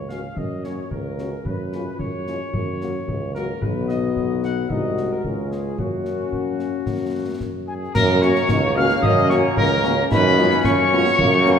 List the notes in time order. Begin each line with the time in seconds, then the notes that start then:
Already playing: C#2
0.09 A#3 C#4 F#4 F5, snare
0.36 F#2 D#5, concert bass drum
0.64 A#3 C#4 F#4 C#5, snare
0.91 C#2 A#4, concert bass drum
1.18 A#3 C#4 F#4, snare
1.45 F#2 B4, concert bass drum
1.72 G#3 C#4 F4, snare
1.99 F#2 C#5, concert bass drum
2.27 G#3 C#4 F4, snare
2.53 F#2, concert bass drum
2.81 F#3 A#3 F#4, snare
3.08 C#2, concert bass drum
3.35 F#3 A#3 F#4 A#4, snare
3.62 B1 F#3 B3 F#4 B4, concert bass drum
3.88 D#5, snare
4.16 B1, concert bass drum
4.43 F#5, snare
4.70 C2 G#3 D#4 F#4 D#5, concert bass drum
4.97 snare
5.11 A#4
5.24 C#2 G#3 C#4 F4, concert bass drum
5.51 G#4, snare
5.78 F#2 A#3 C#4 F#4, concert bass drum
6.05 snare
6.32 F#2, concert bass drum
6.59 snare
6.86 F#2, concert bass drum, snare
7.40 F#2, concert bass drum, snare
7.67 G#4 G#5
7.94 F#2 F#3 A#3 A#4 A#5, concert bass drum, snare, crash
8.21 A#3 C#4 F#4 C#5 C#6, snare
8.35 snare
8.49 C#2 D#4, concert bass drum, snare
8.76 A#3 C#4 F#4 F5 F6
8.89 snare
9.02 F#2 D#5 D#6, concert bass drum
9.29 A#3 C#4 F#4 C#5 C#6, snare
9.57 C#2 A#4 A#5, concert bass drum
9.84 A#3 C#4 F#4, snare
10.11 F#2 F3 C#4 D#4 B4 B5, concert bass drum, snare, crash
10.38 G#3 C#4 F4, snare
10.51 snare
10.64 F#2 C#4 C#5 C#6, concert bass drum, snare
10.92 G#3 B3 C#4 F4
11.05 snare
11.18 F#2 F#3 A#3, concert bass drum
11.46 A#3 B3 C#4 F#4, snare